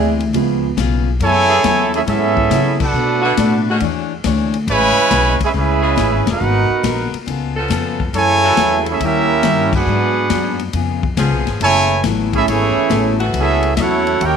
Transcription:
Already playing: upright bass D2, steel-string acoustic guitar E3 C4 D4 G#4, grand piano G#4 D5 E5 G#5
0.20 ride
0.33 upright bass C#2, steel-string acoustic guitar C#3 B3 F4 G#4, grand piano F3 G#3 B3, kick, ride
0.77 upright bass B1, steel-string acoustic guitar C#3 B3 F4 G#4, kick, snare, hi-hat pedal, ride
1.20 upright bass F#2, trombone section C#3 E3 A3, steel-string acoustic guitar F#3 B3 E4 A4, trumpet section E4 A4 C#5 G#5, kick, ride
1.48 saxophone section E3 A3 B3 G#4
1.64 upright bass E2, steel-string acoustic guitar F#3 B3 E4 A4, kick, snare, hi-hat pedal, ride
1.94 trombone section A3 C#4 E4, trumpet section C#4 G#4 A4 E5, ride
2.06 upright bass G#2, steel-string acoustic guitar F#3 B3 E4 A4, trombone section B3 C#4 E4, trumpet section C#4 G#4 A4 E5, kick, snare, ride
2.37 kick
2.50 upright bass C#3, steel-string acoustic guitar F#3 B3 E4 A4, snare, hi-hat pedal, ride
2.80 trombone section A3 D4 F#4, trumpet section D4 A4 B4 F#5, kick, crash
2.93 upright bass B2, steel-string acoustic guitar B2 A3 D4
2.97 steel-string acoustic guitar F#4
3.22 saxophone section D3 A3 B3 F#4
3.37 upright bass A2, steel-string acoustic guitar B2 A3 D4 F#4, kick, snare, hi-hat pedal, ride
3.69 saxophone section D3 G#3 C#4 F#4
3.80 upright bass E2, steel-string acoustic guitar E3 D4 G#4 C#5, kick, ride
4.24 upright bass D2, steel-string acoustic guitar E3 D4 G#4 C#5, kick, snare, hi-hat pedal, ride
4.54 ride
4.67 upright bass A1, trombone section C#3 E3 G#3, steel-string acoustic guitar A3 C#4 G#4 B4, trumpet section E4 B4 C#5 G#5, kick, ride
4.98 muted upright bass stroke
5.11 upright bass B1, steel-string acoustic guitar A3 C#4 G#4 B4, kick, snare, hi-hat pedal, ride
5.40 trombone section G#3 C#4 E4, muted upright bass stroke, kick, ride
5.45 trumpet section C#4 G#4 B4 E5
5.54 upright bass C#2, steel-string acoustic guitar A3 C#4 G#4 B4, trumpet section C#4, kick
5.58 trombone section G#3 C#4 E4, trumpet section G#4 B4 E5
5.82 saxophone section C#3 G#3 B3 G#4
5.96 upright bass A1, steel-string acoustic guitar A3 C#4 G#4 B4, kick, snare, hi-hat pedal, ride
6.11 upright bass G#1
6.26 upright bass E1, snare, ride
6.30 trombone section B3 F#4, trumpet section D#4 A#4 B4 F#5
6.40 upright bass G#1, steel-string acoustic guitar G#3 B3 F#4 A#4
6.70 muted upright bass stroke
6.83 upright bass A#1, steel-string acoustic guitar G#3 B3 F#4 A#4, kick, snare, hi-hat pedal, ride
7.13 muted upright bass stroke, ride
7.26 upright bass C#2, steel-string acoustic guitar C#3 B3 F4, kick, ride
7.30 steel-string acoustic guitar A4
7.56 saxophone section F3 B3 C#4 A4
7.68 upright bass F2, steel-string acoustic guitar C#3 B3 F4 A4, kick, snare, hi-hat pedal, ride
8.00 kick
8.13 upright bass F#2, trombone section C#3, steel-string acoustic guitar F#3 A3 E4 G#4, trumpet section E4 A4 C#5 G#5, kick, ride
8.17 trombone section E3 A3
8.43 saxophone section F#3 A3 E4 A4
8.56 upright bass E2, steel-string acoustic guitar F#3 A3 E4 G#4, kick, snare, hi-hat pedal, ride
8.86 trombone section A3 C#4 E4, ride
8.91 trumpet section C#4 G#4 A4 E5
9.00 upright bass D#2, steel-string acoustic guitar D#3 G3 C#4 E4, trombone section A#3 C#4 E4, trumpet section C#4, kick, ride
9.04 trumpet section G4 A#4 E5
9.43 upright bass G2, steel-string acoustic guitar D#3 G3 C#4 E4, kick, snare, hi-hat pedal, ride
9.73 trombone section B3 D4 F#4, trumpet section D4 G#4 B4 F#5, kick, crash
9.86 upright bass G#2, steel-string acoustic guitar G#2 F#3 B3 D4
10.30 upright bass F#2, steel-string acoustic guitar G#2 F#3 B3 D4, kick, snare, hi-hat pedal, ride
10.59 ride
10.73 upright bass F2, steel-string acoustic guitar C#3 B3 F4 G#4, kick, ride
11.03 kick
11.17 upright bass C#2, steel-string acoustic guitar C#3 B3 F4 G#4, saxophone section F3 B3 C#4 G#4, kick, snare, hi-hat pedal, ride
11.31 upright bass B1
11.45 upright bass G#1, snare, ride
11.60 upright bass F#1, trombone section C#3 E3 A3, steel-string acoustic guitar F#3 B3 E4 A4, trumpet section E4 A4 C#5 G#5, kick, ride
12.04 upright bass A1, steel-string acoustic guitar F#3 B3 E4 A4, kick, snare, hi-hat pedal, ride
12.33 trombone section A3 C#4 E4, trumpet section C#4 G#4 A4 E5, kick, ride
12.47 upright bass G#1, trombone section E3 A3 C#4, steel-string acoustic guitar F#3 B3 E4 A4, trumpet section A3 E4 G#4 C#5, kick, ride
12.76 muted upright bass stroke
12.90 upright bass A1, steel-string acoustic guitar F#3 B3 E4 A4, kick, snare, hi-hat pedal, ride
13.19 saxophone section E3 A3 B3 F#4, ride
13.33 upright bass C#2, steel-string acoustic guitar F#3 B3 E4, kick, ride
13.37 trombone section A3 C#4 E4, trumpet section C#4 G#4 A4 E5, steel-string acoustic guitar A4
13.63 ride
13.76 upright bass E2, steel-string acoustic guitar F#3 B3 E4, trumpet section E5, kick, snare, hi-hat pedal, ride
13.80 trombone section A3 C#4 F#4, trumpet section E4 A4 C#5 F#5, steel-string acoustic guitar A4
14.07 ride
14.20 upright bass D#2, steel-string acoustic guitar D#3 A#3 C#4 G4, trombone section A#3 C#4 G4, trumpet section C#5, kick, ride
14.25 trumpet section D#4 A#4 G5

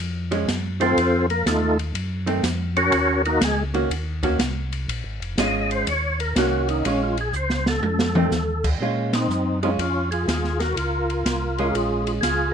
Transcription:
0.00 tonewheel organ F2
0.31 hollow-body jazz guitar F3 G#3 C#4, ride
0.47 tonewheel organ F#2, kick, snare, hi-hat pedal, ride
0.80 hollow-body jazz guitar D#3 A3 C4, tonewheel organ C4 F4 A4 C5, ride
0.96 tonewheel organ F2, kick, ride
1.30 tonewheel organ A#3 A#4, ride
1.45 tonewheel organ D#2 A3 D#4 F4 A4, kick, snare, hi-hat pedal, ride
1.79 ride
1.94 tonewheel organ F#2, kick, ride
2.26 hollow-body jazz guitar D#3 A3 C4, ride
2.43 tonewheel organ F2, kick, snare, hi-hat pedal, ride
2.77 tonewheel organ C#4 F#4 A#4 C#5, ride
2.92 tonewheel organ D#2, kick, ride
3.25 tonewheel organ A#3 D#4 F#4 A#4, ride
3.41 tonewheel organ C#2 G#4, kick, snare, hi-hat pedal, ride
3.45 tonewheel organ G#3
3.74 hollow-body jazz guitar D#3 A#3 C#4 F#4, ride
3.90 tonewheel organ D#2, kick, ride
4.23 hollow-body jazz guitar D#3 A#3 C#4 F#4, kick, ride
4.39 tonewheel organ C2, snare, hi-hat pedal, ride
4.72 ride
4.88 tonewheel organ A#1, kick, ride
5.04 tonewheel organ G#1
5.20 tonewheel organ F1, ride
5.37 tonewheel organ G#1 D#5, hollow-body jazz guitar G#3 C#4 F4, kick, snare, hi-hat pedal, ride
5.71 tonewheel organ C5, ride
5.86 tonewheel organ D#2 C#5, kick, ride
6.20 tonewheel organ A#4, ride
6.36 tonewheel organ C2 F#4, hollow-body jazz guitar D#3 A#3 C#4 F#4, kick, snare, hi-hat pedal, ride
6.69 tonewheel organ D#4, ride
6.84 tonewheel organ A#1 C#4, hollow-body jazz guitar G#3 C#4 F4, kick, ride
7.03 tonewheel organ F4
7.17 tonewheel organ G#4, ride
7.33 tonewheel organ C#2 C5, hi-hat pedal
7.50 snare
7.66 tonewheel organ A4, snare
7.81 tonewheel organ F2, high tom
7.99 snare
8.15 hollow-body jazz guitar D#3 A3 C4, mid tom
8.31 tonewheel organ D#2, snare, hi-hat pedal
8.64 kick, crash
8.80 tonewheel organ A#2, hollow-body jazz guitar G#3 C#4 F4, kick
9.13 tonewheel organ C4 D#4, snare, ride
9.29 tonewheel organ F#2, hi-hat pedal
9.63 hollow-body jazz guitar G#3 C#4 F4, tonewheel organ C4 D#4, ride
9.79 tonewheel organ F2 C#4 F4, kick, ride
10.11 tonewheel organ F4 G#4, ride
10.28 tonewheel organ D#2 F4 G#4, kick, snare, hi-hat pedal, ride
10.44 snare
10.60 tonewheel organ F#4 A#4, snare, ride
10.74 tonewheel organ C#2 F4 A#4, kick, ride
11.10 ride
11.25 tonewheel organ C2, kick, snare, hi-hat pedal, ride
11.58 hollow-body jazz guitar G#3 C#4 F4, ride
11.71 tonewheel organ A#1 F4 G#4, kick, ride
12.04 tonewheel organ F4 G#4, ride
12.21 tonewheel organ C#2 F4 G#4, kick, snare, hi-hat pedal, ride

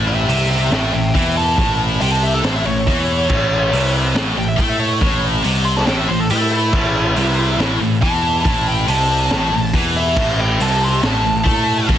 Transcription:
Already playing: picked electric bass A1, distorted electric guitar A2
0.08 lead electric guitar G4 E5
0.28 picked electric bass C2, distorted electric guitar C3, lead electric guitar G4 E5, open hi-hat
0.50 lead electric guitar G4 E5
0.71 picked electric bass A1, distorted electric guitar A2, lead electric guitar E5 G5, snare, open hi-hat
0.93 picked electric bass A1, distorted electric guitar A2, lead electric guitar E5 G5
1.15 picked electric bass E2, distorted electric guitar E3, lead electric guitar E5 G5, kick, open hi-hat
1.37 lead electric guitar A5
1.57 picked electric bass A1, distorted electric guitar A2, kick, open hi-hat
2.00 picked electric bass C2, distorted electric guitar C3, lead electric guitar G5, open hi-hat
2.12 lead electric guitar A5
2.23 lead electric guitar E5
2.34 lead electric guitar A4
2.44 picked electric bass A1, distorted electric guitar A2, lead electric guitar C5, snare, open hi-hat
2.55 lead electric guitar E5
2.65 picked electric bass A1, distorted electric guitar A2, lead electric guitar C#5
2.87 picked electric bass E2, distorted electric guitar E3, kick, open hi-hat
3.29 picked electric bass A1, distorted electric guitar A2, kick, crash
3.71 picked electric bass C2, distorted electric guitar C3, open hi-hat
4.15 picked electric bass A1, distorted electric guitar A2, snare, open hi-hat
4.37 picked electric bass A1, distorted electric guitar A2, lead electric guitar G5
4.48 lead electric guitar E5
4.57 picked electric bass A2, distorted electric guitar A3, lead electric guitar G5, kick, open hi-hat
4.69 lead electric guitar E5
4.79 lead electric guitar C#5
5.01 picked electric bass A1, distorted electric guitar A2, kick, open hi-hat
5.44 picked electric bass C2, distorted electric guitar C3, open hi-hat
5.65 lead electric guitar C6
5.76 lead electric guitar A5, snare
5.86 picked electric bass A1, distorted electric guitar A2, lead electric guitar G5, snare, open hi-hat
5.97 lead electric guitar E5
6.08 picked electric bass A1, distorted electric guitar A2, lead electric guitar C5
6.20 lead electric guitar A4
6.30 picked electric bass A2, distorted electric guitar A3, lead electric guitar G4, open hi-hat
6.41 lead electric guitar E4
6.52 lead electric guitar E4
6.73 picked electric bass A1, distorted electric guitar A2, kick, crash
7.16 picked electric bass C2, distorted electric guitar C3, open hi-hat
7.58 picked electric bass A1, distorted electric guitar A2, snare, open hi-hat
7.81 picked electric bass A1, distorted electric guitar A2
8.02 picked electric bass E2, distorted electric guitar E3, lead electric guitar A5, kick, open hi-hat
8.45 picked electric bass A1, distorted electric guitar A2, lead electric guitar A5, kick, open hi-hat
8.68 lead electric guitar G5
8.88 picked electric bass C2, distorted electric guitar C3, lead electric guitar A5, open hi-hat
9.30 picked electric bass A1, distorted electric guitar A2, snare, open hi-hat
9.52 picked electric bass A1, distorted electric guitar A2
9.73 picked electric bass E2, distorted electric guitar E3, kick, open hi-hat
9.97 lead electric guitar E5
10.16 picked electric bass A1, distorted electric guitar A2, kick, crash
10.41 lead electric guitar G5
10.60 picked electric bass C2, distorted electric guitar C3, lead electric guitar A5, open hi-hat
10.84 lead electric guitar C6
11.03 picked electric bass A1, distorted electric guitar A2, lead electric guitar A5, snare, open hi-hat
11.24 picked electric bass A1, distorted electric guitar A2
11.44 picked electric bass A2, distorted electric guitar A3, kick, open hi-hat
11.87 picked electric bass A1, distorted electric guitar A2, kick, open hi-hat

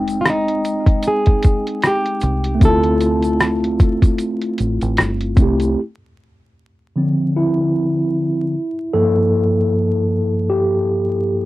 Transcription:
Already playing: fingered electric bass F1, tine electric piano G#3 C4 D#4 G5
0.07 closed hi-hat, shaker
0.21 nylon-string guitar F4
0.25 cross-stick, closed hi-hat, shaker
0.29 nylon-string guitar D#4
0.48 closed hi-hat
0.65 closed hi-hat, shaker
0.87 kick, closed hi-hat
1.03 closed hi-hat, shaker
1.08 nylon-string guitar G#4
1.26 kick, closed hi-hat
1.43 kick, closed hi-hat, shaker
1.67 closed hi-hat
1.82 cross-stick, closed hi-hat, shaker
1.87 nylon-string guitar G4
2.06 closed hi-hat
2.21 fingered electric bass C2, closed hi-hat, shaker
2.44 closed hi-hat
2.55 tine electric piano A3
2.59 fingered electric bass D2, tine electric piano C4, kick, closed hi-hat, shaker
2.64 tine electric piano E4, nylon-string guitar A4
2.68 tine electric piano F4
2.84 closed hi-hat
3.01 closed hi-hat, shaker
3.23 closed hi-hat, shaker
3.40 cross-stick, closed hi-hat, shaker
3.64 closed hi-hat
3.79 kick, closed hi-hat, shaker
4.02 kick, closed hi-hat, shaker
4.18 closed hi-hat, shaker
4.42 closed hi-hat
4.58 fingered electric bass A1, closed hi-hat, shaker
4.82 fingered electric bass A1, closed hi-hat, shaker
4.97 fingered electric bass G1, cross-stick, closed hi-hat, shaker
5.21 closed hi-hat
5.36 fingered electric bass C2, tine electric piano A3 C4, kick, closed hi-hat, shaker
5.40 tine electric piano E4 G4
5.60 closed hi-hat, shaker
6.96 tine electric piano D3 F3 C4
7.36 tine electric piano E4
8.93 tine electric piano G2 F3 A#3 A4
10.50 tine electric piano G4

